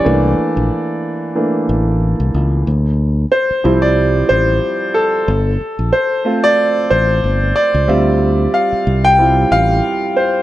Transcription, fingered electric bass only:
X:1
M:4/4
L:1/16
Q:"Swing 16ths" 1/4=92
K:Dm
V:1 name="Fingered electric bass" clef=bass
C,,2 z B,,, z6 A,,,3 C,, ^C,,2 | D,,4 z2 C,,4 A,,,2 z4 | G,,,2 z B,,, z6 A,,,2 G,,,2 z ^C,, | D,,4 z2 C,,4 A,,,2 z4 |]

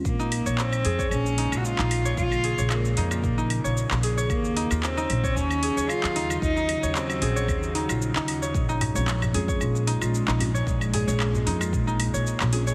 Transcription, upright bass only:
X:1
M:4/4
L:1/16
Q:"Swing 16ths" 1/4=113
K:Bbm
V:1 name="Upright bass" clef=bass
B,,,3 B,,,3 F,,2 B,,,3 B,,,2 B,,,3 | B,,,3 B,,,3 F,,2 B,,,3 B,,,2 B,,,3 | E,,3 E,,3 B,,,2 E,,3 E,,2 E,,3 | E,,3 E,,3 B,,,2 E,,3 B,,,2 E,,3 |
B,,,3 B,,,3 F,,2 B,,,3 B,,,2 B,,,3 | B,,,3 B,,,3 F,,2 B,,,3 B,,,2 B,,,3 |]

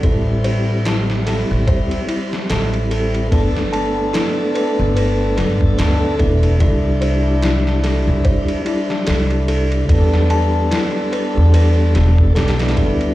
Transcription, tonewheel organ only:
X:1
M:4/4
L:1/16
Q:"Swing 16ths" 1/4=73
K:Am
V:1 name="Tonewheel organ"
[G,CE]8- [G,CE]2 [G,CE]6 | [A,B,DA]12- [A,B,DA]2 [A,B,DE]2 | [G,DE]8- [G,DE]2 [G,DE]6 | [G,B,DA]12 [G,B,DG] [G,B,DE]3 |]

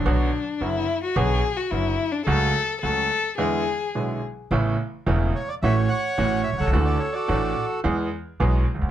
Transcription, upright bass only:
X:1
M:4/4
L:1/16
Q:1/4=108
K:Emix
V:1 name="Upright bass" clef=bass
B,,,3/2 z2 z/2 F,,,3/2 z2 z/2 B,,,3/2 z2 z/2 F,,,3/2 z2 z/2 | C,,3/2 z2 z/2 C,,3/2 z8 z2 z/2 | [K:A] A,,,3/2 z2 z/2 E,,,3/2 z2 z/2 A,,,3/2 z2 z/2 A,,,3/2 z B,,,/2 =C,,/2 ^C,,/2 | D,,3/2 z2 z/2 A,,,3/2 z2 z/2 E,,3/2 z2 z/2 B,,,3/2 z C,,/2 D,,/2 z/2 |]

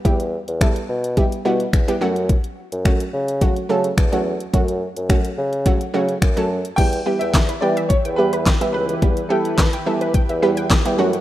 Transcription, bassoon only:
X:1
M:4/4
L:1/16
Q:1/4=107
K:Edor
V:1 name="Bassoon" clef=bass
E,,3 E,,3 B,,4 B,,2 E,,2 F,,2- | F,, z2 F,,3 C,4 C,2 E,,4 | F,,3 F,,3 C,4 C,2 F,,4 | E,,2 z E,,3 E,3 E,,4 E, C,,2 |
E,,2 z4 E,3 E,,4 E,, F,,2 |]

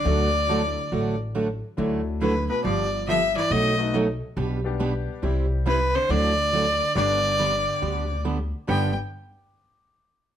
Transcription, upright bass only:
X:1
M:4/4
L:1/8
Q:"Swing" 1/4=139
K:G
V:1 name="Upright bass" clef=bass
D,,4 A,,,4 | D,,4 G,,,4 | B,,,4 B,,,4 | C,,4 D,,4 |
G,,,4 D,,4 | G,,, z6 z |]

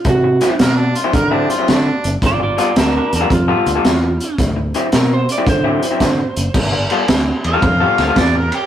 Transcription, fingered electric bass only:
X:1
M:4/4
L:1/8
Q:"Swing" 1/4=111
K:Gmix
V:1 name="Fingered electric bass" clef=bass
C,2 B,,2 D,2 D, ^F,,, | G,,,2 D,, E,, F,, D,, E,,2 | D,,2 B,,2 D,2 D, ^F,,, | G,,,2 D,, E,, F,, D,, E,,2 |]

